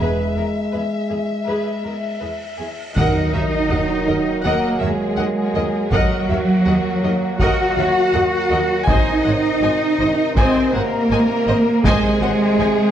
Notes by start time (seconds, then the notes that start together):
Already playing: G#3 G#4 E5
0.00 E1 B4, cymbal swell
0.36 E2 G#4 A#4
0.72 E2 G#4 B4
1.10 E2 G#4
1.46 E2 G#4 B4
1.84 E2 G#4 A#4
2.20 E2 G#4 B4
2.58 E2 G#4
2.93 D#2 D#3 F#3 A#3 D#4 A#4 D#5 F#5, taiko, sub drop
3.33 D#2 A#4 C#5 E5
3.69 D#2 A#4 D#5 F#5
4.07 D#2 A#4 D#5
4.43 D#2 A#3 A#4 D#5 F#5
4.80 D#2 G#3 G#4 A#4 C#5 E5
5.17 D#2 A#4 D#5 F#5
5.55 D#2 A#4 D#5
5.91 D#2 F#3 A#3 F#4 A#4 D#5 F#5, taiko
6.29 D#2 A#4 C#5 E5
6.66 D#2 A#4 D#5 F#5
7.03 D#2 A#4 D#5
7.39 D#2 F#4 A#4 D#5 F#5, taiko
7.77 D#2 A#4 C#5 E5
8.13 D#2 A#4 D#5 F#5
8.51 D#2 A#4 D#5
8.86 G#1 C3 D#3 D#4 C5 D#5 G#5, taiko
9.25 G#1 C5 C#5 F#5
9.62 G#1 C5 D#5 G#5
10.00 G#1 C5 D#5
10.36 G#1 C4 C5 D#5 G#5, taiko
10.73 G#1 A#3 A#4 C5 C#5 F#5
11.10 G#1 C5 D#5 G#5
11.47 G#1 C5 D#5
11.84 G#1 C3 D#3 G#3 G#4 C5 D#5 G#5, taiko
12.22 G#1 C5 C#5 F#5
12.58 G#1 C5 D#5 G#5